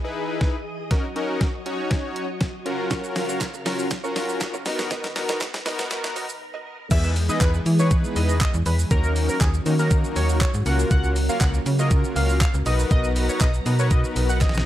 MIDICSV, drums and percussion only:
0, 0, Header, 1, 2, 480
1, 0, Start_track
1, 0, Tempo, 500000
1, 874, Time_signature, 4, 2, 24, 8
1, 14072, End_track
2, 0, Start_track
2, 0, Title_t, "Drums"
2, 393, Note_on_c, 9, 38, 67
2, 395, Note_on_c, 9, 36, 98
2, 489, Note_off_c, 9, 38, 0
2, 491, Note_off_c, 9, 36, 0
2, 872, Note_on_c, 9, 38, 69
2, 872, Note_on_c, 9, 42, 69
2, 874, Note_on_c, 9, 36, 118
2, 968, Note_off_c, 9, 38, 0
2, 968, Note_off_c, 9, 42, 0
2, 970, Note_off_c, 9, 36, 0
2, 1113, Note_on_c, 9, 42, 48
2, 1209, Note_off_c, 9, 42, 0
2, 1352, Note_on_c, 9, 42, 70
2, 1353, Note_on_c, 9, 36, 126
2, 1353, Note_on_c, 9, 38, 77
2, 1448, Note_off_c, 9, 42, 0
2, 1449, Note_off_c, 9, 36, 0
2, 1449, Note_off_c, 9, 38, 0
2, 1593, Note_on_c, 9, 42, 50
2, 1689, Note_off_c, 9, 42, 0
2, 1831, Note_on_c, 9, 42, 75
2, 1832, Note_on_c, 9, 38, 78
2, 1833, Note_on_c, 9, 36, 127
2, 1927, Note_off_c, 9, 42, 0
2, 1928, Note_off_c, 9, 38, 0
2, 1929, Note_off_c, 9, 36, 0
2, 2074, Note_on_c, 9, 42, 53
2, 2170, Note_off_c, 9, 42, 0
2, 2310, Note_on_c, 9, 42, 80
2, 2311, Note_on_c, 9, 38, 81
2, 2314, Note_on_c, 9, 36, 103
2, 2406, Note_off_c, 9, 42, 0
2, 2407, Note_off_c, 9, 38, 0
2, 2410, Note_off_c, 9, 36, 0
2, 2552, Note_on_c, 9, 42, 59
2, 2648, Note_off_c, 9, 42, 0
2, 2792, Note_on_c, 9, 38, 85
2, 2792, Note_on_c, 9, 42, 69
2, 2792, Note_on_c, 9, 82, 68
2, 2793, Note_on_c, 9, 36, 117
2, 2888, Note_off_c, 9, 38, 0
2, 2888, Note_off_c, 9, 42, 0
2, 2888, Note_off_c, 9, 82, 0
2, 2889, Note_off_c, 9, 36, 0
2, 2918, Note_on_c, 9, 82, 51
2, 3014, Note_off_c, 9, 82, 0
2, 3033, Note_on_c, 9, 38, 88
2, 3033, Note_on_c, 9, 46, 68
2, 3033, Note_on_c, 9, 82, 46
2, 3129, Note_off_c, 9, 38, 0
2, 3129, Note_off_c, 9, 46, 0
2, 3129, Note_off_c, 9, 82, 0
2, 3159, Note_on_c, 9, 82, 86
2, 3255, Note_off_c, 9, 82, 0
2, 3271, Note_on_c, 9, 42, 74
2, 3271, Note_on_c, 9, 82, 72
2, 3272, Note_on_c, 9, 38, 95
2, 3273, Note_on_c, 9, 36, 121
2, 3274, Note_on_c, 9, 39, 88
2, 3367, Note_off_c, 9, 42, 0
2, 3367, Note_off_c, 9, 82, 0
2, 3368, Note_off_c, 9, 38, 0
2, 3369, Note_off_c, 9, 36, 0
2, 3370, Note_off_c, 9, 39, 0
2, 3398, Note_on_c, 9, 82, 54
2, 3494, Note_off_c, 9, 82, 0
2, 3513, Note_on_c, 9, 38, 100
2, 3514, Note_on_c, 9, 46, 73
2, 3514, Note_on_c, 9, 82, 52
2, 3609, Note_off_c, 9, 38, 0
2, 3610, Note_off_c, 9, 46, 0
2, 3610, Note_off_c, 9, 82, 0
2, 3640, Note_on_c, 9, 82, 79
2, 3736, Note_off_c, 9, 82, 0
2, 3752, Note_on_c, 9, 42, 82
2, 3752, Note_on_c, 9, 82, 79
2, 3753, Note_on_c, 9, 38, 98
2, 3754, Note_on_c, 9, 36, 126
2, 3848, Note_off_c, 9, 42, 0
2, 3848, Note_off_c, 9, 82, 0
2, 3849, Note_off_c, 9, 38, 0
2, 3850, Note_off_c, 9, 36, 0
2, 3882, Note_on_c, 9, 82, 51
2, 3978, Note_off_c, 9, 82, 0
2, 3994, Note_on_c, 9, 38, 97
2, 3995, Note_on_c, 9, 46, 78
2, 3995, Note_on_c, 9, 82, 56
2, 4090, Note_off_c, 9, 38, 0
2, 4091, Note_off_c, 9, 46, 0
2, 4091, Note_off_c, 9, 82, 0
2, 4121, Note_on_c, 9, 82, 82
2, 4217, Note_off_c, 9, 82, 0
2, 4231, Note_on_c, 9, 42, 80
2, 4231, Note_on_c, 9, 82, 77
2, 4232, Note_on_c, 9, 38, 103
2, 4233, Note_on_c, 9, 39, 78
2, 4234, Note_on_c, 9, 36, 104
2, 4327, Note_off_c, 9, 42, 0
2, 4327, Note_off_c, 9, 82, 0
2, 4328, Note_off_c, 9, 38, 0
2, 4329, Note_off_c, 9, 39, 0
2, 4330, Note_off_c, 9, 36, 0
2, 4357, Note_on_c, 9, 82, 58
2, 4453, Note_off_c, 9, 82, 0
2, 4471, Note_on_c, 9, 46, 82
2, 4471, Note_on_c, 9, 82, 58
2, 4472, Note_on_c, 9, 38, 104
2, 4567, Note_off_c, 9, 46, 0
2, 4567, Note_off_c, 9, 82, 0
2, 4568, Note_off_c, 9, 38, 0
2, 4600, Note_on_c, 9, 38, 99
2, 4601, Note_on_c, 9, 82, 84
2, 4696, Note_off_c, 9, 38, 0
2, 4697, Note_off_c, 9, 82, 0
2, 4712, Note_on_c, 9, 38, 104
2, 4712, Note_on_c, 9, 42, 68
2, 4712, Note_on_c, 9, 82, 73
2, 4713, Note_on_c, 9, 36, 122
2, 4808, Note_off_c, 9, 38, 0
2, 4808, Note_off_c, 9, 42, 0
2, 4808, Note_off_c, 9, 82, 0
2, 4809, Note_off_c, 9, 36, 0
2, 4838, Note_on_c, 9, 82, 52
2, 4840, Note_on_c, 9, 38, 107
2, 4934, Note_off_c, 9, 82, 0
2, 4936, Note_off_c, 9, 38, 0
2, 4953, Note_on_c, 9, 38, 102
2, 4953, Note_on_c, 9, 46, 68
2, 4953, Note_on_c, 9, 82, 50
2, 5049, Note_off_c, 9, 38, 0
2, 5049, Note_off_c, 9, 46, 0
2, 5049, Note_off_c, 9, 82, 0
2, 5079, Note_on_c, 9, 38, 104
2, 5079, Note_on_c, 9, 82, 87
2, 5175, Note_off_c, 9, 38, 0
2, 5175, Note_off_c, 9, 82, 0
2, 5191, Note_on_c, 9, 42, 73
2, 5191, Note_on_c, 9, 82, 74
2, 5192, Note_on_c, 9, 38, 115
2, 5193, Note_on_c, 9, 36, 125
2, 5194, Note_on_c, 9, 39, 91
2, 5287, Note_off_c, 9, 42, 0
2, 5287, Note_off_c, 9, 82, 0
2, 5288, Note_off_c, 9, 38, 0
2, 5289, Note_off_c, 9, 36, 0
2, 5290, Note_off_c, 9, 39, 0
2, 5318, Note_on_c, 9, 82, 55
2, 5320, Note_on_c, 9, 38, 109
2, 5414, Note_off_c, 9, 82, 0
2, 5416, Note_off_c, 9, 38, 0
2, 5432, Note_on_c, 9, 38, 112
2, 5433, Note_on_c, 9, 46, 71
2, 5433, Note_on_c, 9, 82, 51
2, 5528, Note_off_c, 9, 38, 0
2, 5529, Note_off_c, 9, 46, 0
2, 5529, Note_off_c, 9, 82, 0
2, 5558, Note_on_c, 9, 82, 82
2, 5559, Note_on_c, 9, 38, 112
2, 5654, Note_off_c, 9, 82, 0
2, 5655, Note_off_c, 9, 38, 0
2, 5671, Note_on_c, 9, 42, 80
2, 5671, Note_on_c, 9, 82, 79
2, 5672, Note_on_c, 9, 38, 118
2, 5767, Note_off_c, 9, 42, 0
2, 5767, Note_off_c, 9, 82, 0
2, 5768, Note_off_c, 9, 38, 0
2, 5800, Note_on_c, 9, 38, 113
2, 5801, Note_on_c, 9, 82, 52
2, 5896, Note_off_c, 9, 38, 0
2, 5897, Note_off_c, 9, 82, 0
2, 5915, Note_on_c, 9, 46, 79
2, 5915, Note_on_c, 9, 82, 55
2, 6011, Note_off_c, 9, 46, 0
2, 6011, Note_off_c, 9, 82, 0
2, 6041, Note_on_c, 9, 82, 81
2, 6137, Note_off_c, 9, 82, 0
2, 6633, Note_on_c, 9, 42, 73
2, 6633, Note_on_c, 9, 49, 107
2, 6633, Note_on_c, 9, 82, 73
2, 6634, Note_on_c, 9, 36, 117
2, 6729, Note_off_c, 9, 42, 0
2, 6729, Note_off_c, 9, 49, 0
2, 6729, Note_off_c, 9, 82, 0
2, 6730, Note_off_c, 9, 36, 0
2, 6760, Note_on_c, 9, 82, 53
2, 6856, Note_off_c, 9, 82, 0
2, 6874, Note_on_c, 9, 46, 72
2, 6874, Note_on_c, 9, 82, 49
2, 6970, Note_off_c, 9, 46, 0
2, 6970, Note_off_c, 9, 82, 0
2, 7000, Note_on_c, 9, 82, 89
2, 7096, Note_off_c, 9, 82, 0
2, 7113, Note_on_c, 9, 42, 72
2, 7113, Note_on_c, 9, 82, 70
2, 7114, Note_on_c, 9, 36, 127
2, 7114, Note_on_c, 9, 39, 126
2, 7116, Note_off_c, 9, 39, 0
2, 7116, Note_on_c, 9, 39, 88
2, 7209, Note_off_c, 9, 42, 0
2, 7209, Note_off_c, 9, 82, 0
2, 7210, Note_off_c, 9, 36, 0
2, 7212, Note_off_c, 9, 39, 0
2, 7240, Note_on_c, 9, 82, 56
2, 7336, Note_off_c, 9, 82, 0
2, 7354, Note_on_c, 9, 46, 76
2, 7354, Note_on_c, 9, 82, 52
2, 7450, Note_off_c, 9, 46, 0
2, 7450, Note_off_c, 9, 82, 0
2, 7480, Note_on_c, 9, 82, 78
2, 7576, Note_off_c, 9, 82, 0
2, 7593, Note_on_c, 9, 42, 81
2, 7593, Note_on_c, 9, 82, 82
2, 7595, Note_on_c, 9, 36, 127
2, 7689, Note_off_c, 9, 42, 0
2, 7689, Note_off_c, 9, 82, 0
2, 7691, Note_off_c, 9, 36, 0
2, 7722, Note_on_c, 9, 82, 52
2, 7818, Note_off_c, 9, 82, 0
2, 7835, Note_on_c, 9, 46, 81
2, 7835, Note_on_c, 9, 82, 55
2, 7931, Note_off_c, 9, 46, 0
2, 7931, Note_off_c, 9, 82, 0
2, 7961, Note_on_c, 9, 82, 82
2, 8057, Note_off_c, 9, 82, 0
2, 8071, Note_on_c, 9, 42, 81
2, 8071, Note_on_c, 9, 82, 79
2, 8073, Note_on_c, 9, 39, 111
2, 8074, Note_off_c, 9, 39, 0
2, 8074, Note_on_c, 9, 39, 85
2, 8075, Note_on_c, 9, 36, 114
2, 8167, Note_off_c, 9, 42, 0
2, 8167, Note_off_c, 9, 82, 0
2, 8170, Note_off_c, 9, 39, 0
2, 8171, Note_off_c, 9, 36, 0
2, 8199, Note_on_c, 9, 82, 58
2, 8295, Note_off_c, 9, 82, 0
2, 8312, Note_on_c, 9, 46, 84
2, 8312, Note_on_c, 9, 82, 60
2, 8408, Note_off_c, 9, 46, 0
2, 8408, Note_off_c, 9, 82, 0
2, 8440, Note_on_c, 9, 82, 87
2, 8536, Note_off_c, 9, 82, 0
2, 8553, Note_on_c, 9, 42, 71
2, 8553, Note_on_c, 9, 82, 72
2, 8554, Note_on_c, 9, 36, 126
2, 8649, Note_off_c, 9, 42, 0
2, 8649, Note_off_c, 9, 82, 0
2, 8650, Note_off_c, 9, 36, 0
2, 8677, Note_on_c, 9, 82, 53
2, 8773, Note_off_c, 9, 82, 0
2, 8793, Note_on_c, 9, 46, 68
2, 8793, Note_on_c, 9, 82, 49
2, 8889, Note_off_c, 9, 46, 0
2, 8889, Note_off_c, 9, 82, 0
2, 8920, Note_on_c, 9, 82, 89
2, 9016, Note_off_c, 9, 82, 0
2, 9032, Note_on_c, 9, 42, 75
2, 9032, Note_on_c, 9, 82, 73
2, 9033, Note_on_c, 9, 39, 123
2, 9034, Note_on_c, 9, 36, 123
2, 9035, Note_off_c, 9, 39, 0
2, 9035, Note_on_c, 9, 39, 89
2, 9128, Note_off_c, 9, 42, 0
2, 9128, Note_off_c, 9, 82, 0
2, 9130, Note_off_c, 9, 36, 0
2, 9131, Note_off_c, 9, 39, 0
2, 9159, Note_on_c, 9, 82, 54
2, 9255, Note_off_c, 9, 82, 0
2, 9274, Note_on_c, 9, 46, 73
2, 9274, Note_on_c, 9, 82, 52
2, 9370, Note_off_c, 9, 46, 0
2, 9370, Note_off_c, 9, 82, 0
2, 9399, Note_on_c, 9, 82, 82
2, 9495, Note_off_c, 9, 82, 0
2, 9511, Note_on_c, 9, 42, 80
2, 9511, Note_on_c, 9, 82, 78
2, 9514, Note_on_c, 9, 36, 127
2, 9607, Note_off_c, 9, 42, 0
2, 9607, Note_off_c, 9, 82, 0
2, 9610, Note_off_c, 9, 36, 0
2, 9642, Note_on_c, 9, 82, 53
2, 9738, Note_off_c, 9, 82, 0
2, 9755, Note_on_c, 9, 46, 77
2, 9755, Note_on_c, 9, 82, 59
2, 9851, Note_off_c, 9, 46, 0
2, 9851, Note_off_c, 9, 82, 0
2, 9880, Note_on_c, 9, 82, 88
2, 9976, Note_off_c, 9, 82, 0
2, 9992, Note_on_c, 9, 42, 83
2, 9992, Note_on_c, 9, 82, 82
2, 9994, Note_on_c, 9, 39, 82
2, 9995, Note_on_c, 9, 36, 106
2, 10088, Note_off_c, 9, 42, 0
2, 10088, Note_off_c, 9, 82, 0
2, 10090, Note_off_c, 9, 39, 0
2, 10091, Note_off_c, 9, 36, 0
2, 10120, Note_on_c, 9, 82, 60
2, 10216, Note_off_c, 9, 82, 0
2, 10233, Note_on_c, 9, 46, 81
2, 10233, Note_on_c, 9, 82, 60
2, 10329, Note_off_c, 9, 46, 0
2, 10329, Note_off_c, 9, 82, 0
2, 10362, Note_on_c, 9, 82, 84
2, 10458, Note_off_c, 9, 82, 0
2, 10473, Note_on_c, 9, 36, 118
2, 10473, Note_on_c, 9, 42, 72
2, 10473, Note_on_c, 9, 82, 71
2, 10569, Note_off_c, 9, 36, 0
2, 10569, Note_off_c, 9, 42, 0
2, 10569, Note_off_c, 9, 82, 0
2, 10599, Note_on_c, 9, 82, 54
2, 10695, Note_off_c, 9, 82, 0
2, 10713, Note_on_c, 9, 46, 69
2, 10713, Note_on_c, 9, 82, 53
2, 10809, Note_off_c, 9, 46, 0
2, 10809, Note_off_c, 9, 82, 0
2, 10840, Note_on_c, 9, 82, 87
2, 10936, Note_off_c, 9, 82, 0
2, 10952, Note_on_c, 9, 42, 76
2, 10952, Note_on_c, 9, 82, 74
2, 10953, Note_on_c, 9, 39, 122
2, 10954, Note_on_c, 9, 36, 124
2, 10955, Note_off_c, 9, 39, 0
2, 10955, Note_on_c, 9, 39, 92
2, 11048, Note_off_c, 9, 42, 0
2, 11048, Note_off_c, 9, 82, 0
2, 11050, Note_off_c, 9, 36, 0
2, 11051, Note_off_c, 9, 39, 0
2, 11079, Note_on_c, 9, 82, 56
2, 11175, Note_off_c, 9, 82, 0
2, 11194, Note_on_c, 9, 46, 70
2, 11194, Note_on_c, 9, 82, 51
2, 11290, Note_off_c, 9, 46, 0
2, 11290, Note_off_c, 9, 82, 0
2, 11319, Note_on_c, 9, 82, 82
2, 11415, Note_off_c, 9, 82, 0
2, 11432, Note_on_c, 9, 42, 81
2, 11432, Note_on_c, 9, 82, 83
2, 11434, Note_on_c, 9, 36, 127
2, 11528, Note_off_c, 9, 42, 0
2, 11528, Note_off_c, 9, 82, 0
2, 11530, Note_off_c, 9, 36, 0
2, 11562, Note_on_c, 9, 82, 54
2, 11658, Note_off_c, 9, 82, 0
2, 11675, Note_on_c, 9, 46, 79
2, 11675, Note_on_c, 9, 82, 57
2, 11771, Note_off_c, 9, 46, 0
2, 11771, Note_off_c, 9, 82, 0
2, 11802, Note_on_c, 9, 82, 83
2, 11898, Note_off_c, 9, 82, 0
2, 11913, Note_on_c, 9, 42, 81
2, 11913, Note_on_c, 9, 82, 81
2, 11914, Note_on_c, 9, 39, 85
2, 11915, Note_off_c, 9, 39, 0
2, 11915, Note_on_c, 9, 36, 111
2, 11915, Note_on_c, 9, 39, 112
2, 12009, Note_off_c, 9, 42, 0
2, 12009, Note_off_c, 9, 82, 0
2, 12011, Note_off_c, 9, 36, 0
2, 12011, Note_off_c, 9, 39, 0
2, 12040, Note_on_c, 9, 82, 59
2, 12136, Note_off_c, 9, 82, 0
2, 12153, Note_on_c, 9, 46, 83
2, 12153, Note_on_c, 9, 82, 62
2, 12249, Note_off_c, 9, 46, 0
2, 12249, Note_off_c, 9, 82, 0
2, 12282, Note_on_c, 9, 82, 81
2, 12378, Note_off_c, 9, 82, 0
2, 12393, Note_on_c, 9, 36, 127
2, 12393, Note_on_c, 9, 42, 73
2, 12393, Note_on_c, 9, 82, 72
2, 12489, Note_off_c, 9, 36, 0
2, 12489, Note_off_c, 9, 42, 0
2, 12489, Note_off_c, 9, 82, 0
2, 12519, Note_on_c, 9, 82, 55
2, 12615, Note_off_c, 9, 82, 0
2, 12633, Note_on_c, 9, 46, 71
2, 12633, Note_on_c, 9, 82, 51
2, 12729, Note_off_c, 9, 46, 0
2, 12729, Note_off_c, 9, 82, 0
2, 12760, Note_on_c, 9, 82, 88
2, 12856, Note_off_c, 9, 82, 0
2, 12870, Note_on_c, 9, 42, 72
2, 12870, Note_on_c, 9, 82, 74
2, 12872, Note_on_c, 9, 39, 123
2, 12873, Note_on_c, 9, 36, 127
2, 12874, Note_off_c, 9, 39, 0
2, 12874, Note_on_c, 9, 39, 91
2, 12966, Note_off_c, 9, 42, 0
2, 12966, Note_off_c, 9, 82, 0
2, 12969, Note_off_c, 9, 36, 0
2, 12970, Note_off_c, 9, 39, 0
2, 12998, Note_on_c, 9, 82, 54
2, 13094, Note_off_c, 9, 82, 0
2, 13113, Note_on_c, 9, 46, 73
2, 13113, Note_on_c, 9, 82, 54
2, 13209, Note_off_c, 9, 46, 0
2, 13209, Note_off_c, 9, 82, 0
2, 13240, Note_on_c, 9, 82, 81
2, 13336, Note_off_c, 9, 82, 0
2, 13352, Note_on_c, 9, 42, 80
2, 13352, Note_on_c, 9, 82, 79
2, 13354, Note_on_c, 9, 36, 127
2, 13448, Note_off_c, 9, 42, 0
2, 13448, Note_off_c, 9, 82, 0
2, 13450, Note_off_c, 9, 36, 0
2, 13481, Note_on_c, 9, 82, 55
2, 13577, Note_off_c, 9, 82, 0
2, 13595, Note_on_c, 9, 46, 81
2, 13595, Note_on_c, 9, 82, 59
2, 13691, Note_off_c, 9, 46, 0
2, 13691, Note_off_c, 9, 82, 0
2, 13722, Note_on_c, 9, 82, 81
2, 13818, Note_off_c, 9, 82, 0
2, 13833, Note_on_c, 9, 39, 84
2, 13833, Note_on_c, 9, 42, 84
2, 13833, Note_on_c, 9, 82, 81
2, 13834, Note_on_c, 9, 38, 68
2, 13835, Note_on_c, 9, 36, 111
2, 13913, Note_off_c, 9, 38, 0
2, 13913, Note_on_c, 9, 38, 65
2, 13929, Note_off_c, 9, 39, 0
2, 13929, Note_off_c, 9, 42, 0
2, 13929, Note_off_c, 9, 82, 0
2, 13931, Note_off_c, 9, 36, 0
2, 13959, Note_on_c, 9, 82, 60
2, 13993, Note_off_c, 9, 38, 0
2, 13993, Note_on_c, 9, 38, 92
2, 14055, Note_off_c, 9, 82, 0
2, 14072, Note_off_c, 9, 38, 0
2, 14072, End_track
0, 0, End_of_file